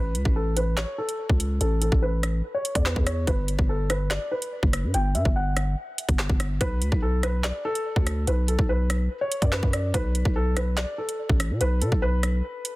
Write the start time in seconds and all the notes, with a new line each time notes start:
Already playing: A1 B4
0.15 C#2, closed hi-hat
0.25 A1, kick
0.36 A4
0.57 B4, closed hi-hat
0.77 C#5, snare, clap, closed hi-hat
0.98 A4
1.09 closed hi-hat
1.29 C#2, kick
1.40 closed hi-hat
1.61 A1 A4, closed hi-hat
1.82 A4, closed hi-hat
1.92 A1, kick
2.02 B4
2.23 cross-stick, closed hi-hat
2.54 C#5
2.65 closed hi-hat
2.75 E2 D5, kick, closed hi-hat
2.86 B4, snare, clap
2.96 E2, kick
3.06 C#5, cross-stick, closed hi-hat
3.27 G1 B4, kick, closed hi-hat
3.48 closed hi-hat
3.59 G1, kick
3.69 A4
3.90 B4, cross-stick, closed hi-hat
4.11 D5, snare, clap, closed hi-hat
4.31 B4
4.42 closed hi-hat
4.63 F#1, kick
4.73 cross-stick, closed hi-hat
4.84 G2
4.94 G1 G5, closed hi-hat
5.15 G2 E5, closed hi-hat
5.25 G1, kick
5.36 F#5
5.57 cross-stick, closed hi-hat
5.98 closed hi-hat
6.09 G1, kick, closed hi-hat
6.19 snare, clap
6.29 G1, kick
6.40 cross-stick, closed hi-hat
6.61 B1 B4, kick, closed hi-hat
6.82 D2, closed hi-hat
6.92 B1, kick
7.02 A4
7.23 B4, cross-stick, closed hi-hat
7.44 D5, snare, clap, closed hi-hat
7.65 A4
7.75 closed hi-hat
7.96 D2, kick
8.07 cross-stick, closed hi-hat
8.27 B1 B4, closed hi-hat
8.48 A4, closed hi-hat
8.59 B1, kick
8.69 B4
8.90 cross-stick, closed hi-hat
9.21 C#5
9.32 closed hi-hat
9.42 F#2 D5, kick, closed hi-hat
9.52 B4, snare, clap
9.63 F#2, kick
9.73 D5, cross-stick, closed hi-hat
9.94 B1 B4, kick, closed hi-hat
10.15 closed hi-hat
10.25 B1, kick
10.36 A4
10.57 B4, cross-stick, closed hi-hat
10.77 D5, snare, clap, closed hi-hat
10.98 A4
11.09 closed hi-hat
11.29 A1, kick
11.40 cross-stick, closed hi-hat
11.50 B2
11.61 B1 B4, closed hi-hat
11.82 B2 A4, closed hi-hat
11.92 B1, kick
12.02 B4
12.23 cross-stick, closed hi-hat
12.65 closed hi-hat